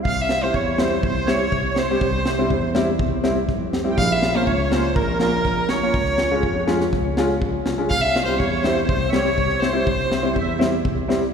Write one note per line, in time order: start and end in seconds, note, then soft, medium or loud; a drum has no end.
0.03 0.35 C2 medium
0.03 0.39 F5 medium
0.03 kick medium
0.08 0.23 F5 medium
0.21 0.45 E5 medium
0.29 0.36 C4 soft
0.29 0.37 E4 soft
0.29 snare medium
0.41 0.55 G3 soft
0.41 0.55 C4 soft
0.41 0.55 E4 medium
0.41 0.53 C5 medium
0.41 0.56 C5 medium
0.52 0.83 E2 medium
0.52 0.79 C#5 medium
0.52 0.83 C#5 medium
0.52 kick medium
0.77 0.92 G3 medium
0.77 0.92 C4 medium
0.77 0.92 E4 medium
0.77 1.01 C5 medium
0.77 snare medium
0.81 1.05 C5 medium
1.03 1.33 C2 medium
1.03 1.29 C5 medium
1.03 1.33 C5 medium
1.03 kick medium
1.26 1.40 G3 medium
1.26 1.40 C4 medium
1.26 1.40 E4 medium
1.26 1.78 C#5 medium
1.26 snare medium
1.31 1.71 C#5 medium
1.52 1.82 C2 medium
1.52 kick medium
1.71 1.79 C#5 soft
1.76 1.83 C4 soft
1.76 1.83 E4 soft
1.76 2.71 C5 medium
1.76 2.76 C5 medium
1.76 snare medium
1.91 2.03 G3 medium
1.91 2.02 C4 medium
1.91 2.03 G4 medium
2.01 2.31 C2 loud
2.01 kick medium
2.26 2.33 C4 soft
2.26 2.33 E4 soft
2.26 snare medium
2.39 2.51 G3 medium
2.39 2.51 C4 medium
2.39 2.51 E4 medium
2.50 2.80 E2 medium
2.50 kick medium
2.75 2.87 G3 medium
2.75 2.87 C4 medium
2.75 2.88 E4 medium
2.75 snare medium
2.99 3.29 C2 medium
2.99 kick medium
3.24 3.36 G3 medium
3.24 3.36 C4 medium
3.24 3.36 E4 medium
3.24 snare medium
3.48 3.78 F2 medium
3.48 kick medium
3.48 snare soft
3.73 3.79 C4 soft
3.73 3.80 G4 soft
3.73 snare medium
3.84 3.97 G3 medium
3.84 3.97 C4 medium
3.84 3.98 E4 medium
3.90 3.98 G5 medium
3.97 4.27 A#1 loud
3.97 4.43 F5 medium
3.97 4.13 F5 loud
3.97 kick medium
4.12 4.38 E5 loud
4.22 4.29 C#4 soft
4.22 4.28 F4 medium
4.22 snare medium
4.34 4.47 A#3 medium
4.34 4.47 C#4 medium
4.34 4.47 F4 medium
4.34 4.48 C5 medium
4.46 4.76 C#2 loud
4.46 4.72 C#5 medium
4.46 4.74 C#5 medium
4.46 kick medium
4.71 4.84 A#3 medium
4.71 4.84 C#4 medium
4.71 4.84 F4 medium
4.71 4.94 C5 medium
4.71 4.97 C5 medium
4.71 snare medium
4.95 5.25 A#1 loud
4.95 5.18 A#4 medium
4.95 5.20 A#4 medium
4.95 kick medium
5.19 5.33 A#3 medium
5.19 5.33 C#4 medium
5.19 5.33 F4 medium
5.19 5.71 A#4 medium
5.19 snare medium
5.45 5.74 A#1 medium
5.45 kick medium
5.45 snare soft
5.69 5.77 C#4 soft
5.69 5.77 F4 soft
5.69 6.63 C#5 medium
5.69 6.68 C#5 medium
5.69 snare medium
5.83 5.95 A#3 medium
5.83 5.95 C#4 medium
5.83 5.95 F4 medium
5.94 6.24 C#2 medium
5.94 kick medium
6.06 snare soft
6.18 6.25 C#4 soft
6.18 6.25 F4 soft
6.18 snare medium
6.31 6.44 G#3 medium
6.31 6.44 C#4 medium
6.31 6.44 F4 medium
6.43 6.73 F2 medium
6.43 kick medium
6.67 6.80 G#3 medium
6.67 6.80 C#4 medium
6.67 6.80 F4 medium
6.67 snare medium
6.81 snare medium
6.93 7.22 C#2 medium
6.93 kick medium
6.93 snare soft
7.17 7.30 G#3 medium
7.17 7.30 C#4 medium
7.17 7.30 F4 medium
7.17 snare medium
7.30 snare soft
7.41 7.63 A#1 medium
7.41 kick medium
7.65 7.88 C2 medium
7.65 7.72 C#4 soft
7.65 7.72 F4 soft
7.65 snare medium
7.78 7.90 G#3 medium
7.78 7.90 C#4 medium
7.78 7.91 F4 medium
7.90 8.20 C2 loud
7.90 8.03 F5 loud
7.90 8.29 F5 loud
7.90 kick medium
8.01 8.24 E5 loud
8.01 snare soft
8.15 8.21 C4 soft
8.15 8.21 E4 soft
8.15 snare medium
8.25 8.40 G3 medium
8.25 8.40 C4 soft
8.25 8.40 E4 medium
8.25 8.39 C5 medium
8.25 8.40 C5 medium
8.38 8.69 E2 medium
8.38 8.64 C#5 medium
8.38 8.65 C#5 medium
8.38 kick medium
8.38 snare soft
8.63 8.76 G3 medium
8.63 8.76 C4 medium
8.63 8.76 E4 medium
8.63 8.85 C5 medium
8.63 8.87 C5 medium
8.63 snare medium
8.85 9.18 C2 medium
8.85 9.12 C5 medium
8.85 9.06 C5 medium
8.85 kick medium
9.07 9.61 C#5 medium
9.07 9.14 E5 medium
9.13 9.25 G3 medium
9.13 9.25 C4 medium
9.13 9.26 G4 medium
9.13 9.64 C#5 loud
9.13 snare medium
9.25 snare soft
9.37 9.67 C2 medium
9.37 kick medium
9.49 snare soft
9.60 9.68 C4 soft
9.60 9.68 E4 soft
9.60 10.59 C5 medium
9.60 10.38 C5 medium
9.60 snare medium
9.73 9.86 G3 medium
9.73 9.86 C4 medium
9.73 9.86 E4 medium
9.86 10.16 C2 medium
9.86 kick medium
9.99 snare soft
10.11 10.17 C4 soft
10.11 10.17 E4 soft
10.11 snare medium
10.23 10.36 G3 medium
10.23 10.35 C4 medium
10.23 10.35 E4 medium
10.36 10.65 E2 medium
10.36 10.60 E5 medium
10.36 kick medium
10.59 10.72 G3 medium
10.59 10.72 C4 medium
10.59 10.72 E4 medium
10.59 snare medium
10.85 11.14 C2 medium
10.85 kick medium
11.08 11.21 G3 medium
11.08 11.21 C4 medium
11.08 11.21 E4 medium
11.08 snare medium
11.22 snare soft